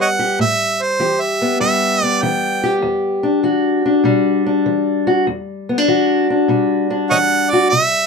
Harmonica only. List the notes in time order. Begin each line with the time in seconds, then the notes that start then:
0.01 C#5 D#5 F#5
0.41 E5
0.82 C5
1.21 E5
1.61 E5
2.05 D5
2.22 G5
7.10 C#5 D#5 F#5
7.50 D5
7.69 E5